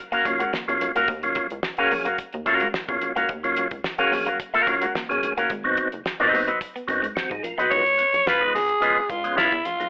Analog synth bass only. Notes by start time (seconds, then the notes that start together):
0.26 D#2
0.68 E2
0.81 B1
0.96 C#2
1.08 D#2
1.51 C#2
1.79 A#1
1.92 A#1
2.19 D#2
2.34 D#2
2.89 E2
3.02 B1
3.16 C#2
3.29 D#2
3.71 C#2
4.00 A#1
4.13 A#1
4.67 D#2
5.10 E2
5.24 F1
5.38 F#1
5.50 G#1
5.93 F#1
6.20 D#2
6.33 D#2
6.88 F#2
7.31 G#2
7.44 A#1
7.58 B1
7.72 C#2
8.13 B1
8.41 G#1
8.54 G#1
9.09 C#2
9.52 E2
9.65 A#1
9.80 B1